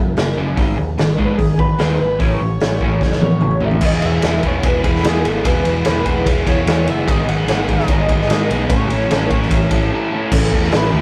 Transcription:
Already playing: F#2 C#3 E5
0.17 F#1 F#2 C#3, snare, open hi-hat
0.37 F#1 F#2 C#3 F#3
0.56 G#1 G#2 D#3 G#3, kick, open hi-hat
0.77 D#2 G#2 D#3
0.98 G#1 G#2 D#3, snare, open hi-hat
1.17 G#2 D#3 G#3, kick
1.25 B4
1.38 G#1 G#2 D#3 G#4, kick, open hi-hat
1.58 G#2 D#3 B4, kick
1.79 D#2 G#2 D#3 G#3, snare, open hi-hat
1.98 G#1 G#2 D#3 B4
2.19 A1 A2 E3 A3 C#5, kick, open hi-hat
2.41 A1 A2 E3
2.60 A1 A2 E3, snare, open hi-hat
2.81 A2 E3 A3, kick
3.01 F#1 A2 E3, kick, snare
3.12 snare
3.21 A2 E3 C#5, high tom
3.32 high tom
3.41 A1 A2 E3, mid tom
3.51 mid tom
3.60 A1 A2 E3 A3, floor tom
3.65 E5
3.71 floor tom
3.81 E1 E3 G#3 B3 E4 G#4, kick, crash
3.85 D#5
4.02 E1 B3 E4 G#4 E5, ride
4.22 E1 G#3 B3 E4, snare, ride
4.26 G#4
4.43 E1 E3 G#3 B3 E4 G#4, kick, ride
4.47 C#5
4.63 E1 G#3 B3 E4 G#4 B4, kick, ride
4.83 E1 E3 G#3 B3 E4 G#4 B4, kick, ride
4.96 snare
5.04 E2 G#3 B3 E4 G#4, snare, ride
5.24 G#1 B3 E4 G#4, ride
5.29 A4
5.43 E1 E3 G#3 B3 E4 G#4 B4, kick, ride
5.63 E1 B3 E4 G#4, ride
5.85 E1 G#3 B3 E4 G#4 B4, snare, ride
6.04 E1 E3 G#3 B3 E4 G#4, kick, ride
6.26 E1 G#3 B3 E4 G#4, kick, ride
6.45 E1 E3 G#3 B3 E4 G#4 C#5, kick, ride
6.66 E2 G#3 B3 E4 G#4, snare, ride
6.86 F#1 B3 E4 G#4 E5, ride
7.07 G#1 G#2 D#3 G#3 B3 D#4 G#4 D#5, kick, ride
7.28 G#1 G#3 B3 D#4 G#4 F#5, ride
7.47 G#1 G#3 B3 D#4 G#4, snare, ride
7.68 G#1 G#2 D#3 G#3 B3 D#4 G#4 D#5, kick, ride
7.79 snare
7.88 G#1 G#3 B3 D#4 G#4, kick, ride
8.09 G#1 G#2 D#3 G#3 B3 D#4 G#4, kick, ride
8.21 snare
8.29 G#2 G#3 B3 D#4 G#4 D#5, snare, ride
8.49 B1 G#3 B3 D#4 G#4, ride
8.69 A1 A2 E3 A3 C#4 E4 A4 C#5, kick, ride
8.90 A1 A3 C#4 E4 A4, ride
9.09 A1 A3 C#4 E4 A4, snare, ride
9.30 A1 A2 E3 A3 C#4 E4 A4, kick, ride
9.42 snare
9.50 A1 A3 C#4 E4 A4, kick, ride
9.70 A1 A2 E3 A3 C#4 E4 A4, kick, ride
9.91 A3 C#4 E4 A4
10.11 A3 C#4 E4 A4
10.32 A1 A2 E3 A3 C#4 E4 A4, kick, crash
10.52 E2 A2 E3 A3 C#4 E4, kick
10.63 snare
10.71 A1 A2 E3 A3 C#4 E4 B4, snare, open hi-hat
10.92 D#2 A2 E3 A3 C#4 E4

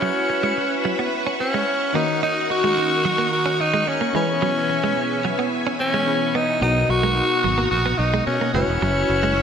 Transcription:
Already playing: C#4 E4 F#4 B4 E5 F#5 C#6
0.02 F#3
0.30 muted clean electric guitar stroke
0.43 G#3
0.57 muted clean electric guitar stroke
0.85 F#3
0.99 B3
1.27 C#4
1.40 C#4, muted clean electric guitar stroke
1.54 G#3
1.93 D#3 A#3 C#4 D#4 F#4 A#4 D#5
2.23 D#4
2.50 F#4, muted clean electric guitar stroke
2.64 G#3
2.77 muted clean electric guitar stroke
3.05 F#3
3.18 A#3
3.33 F#4
3.46 C#4
3.60 D#4, muted clean electric guitar stroke
3.74 G#3
3.87 C#4, muted clean electric guitar stroke
4.01 A#3
4.13 E3 G#3 B3 C#4 E4 G#4 B4 E5 G#5
4.42 F#3
4.69 muted clean electric guitar stroke
4.84 G#3
4.97 muted clean electric guitar stroke
5.25 F#3
5.39 B3
5.67 C#4
5.80 C#4, muted clean electric guitar stroke
5.94 G#3
6.06 C#4 E4 G#4 B4
6.35 B3 D#4
6.61 B1 B2 B3 D#4 F#4 A#4 F#5 A#5 D#6
6.89 B1 F#4, muted clean electric guitar stroke
7.03 G#3
7.17 muted clean electric guitar stroke
7.44 G#1 F#3
7.58 A#3
7.71 A#1 F#4
7.86 B3
7.98 B1 D#4, muted clean electric guitar stroke
8.14 G#3
8.27 B2 C#4, muted clean electric guitar stroke
8.41 A#3
8.53 F#1 G#3 C#4 E4 F#4 B4 C#5 B5 E6
8.68 E1
8.82 F#1 F#3
9.10 F#1, muted clean electric guitar stroke
9.23 G#3
9.37 muted clean electric guitar stroke

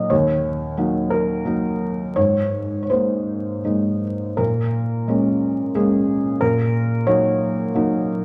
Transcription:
Already playing: A#2 F#3 A#3 D#4 C#5 D#5
0.10 D#2 C#5
0.77 F#3 A#3 D#4
1.10 A#4
1.45 F#3 A#3 D#4
2.16 G#2 C#5
2.83 C#5
2.90 G#3 A#3 D#4 C5
3.65 G#3 A#3 D#4
4.37 A#2 A#4
5.08 G#3 A#3 C#4
5.75 G#3 A#3 C#4 G#4
6.41 A#2 A#4
7.07 F#3 A#3 D#4 C#5
7.75 F#3 A#3 D#4

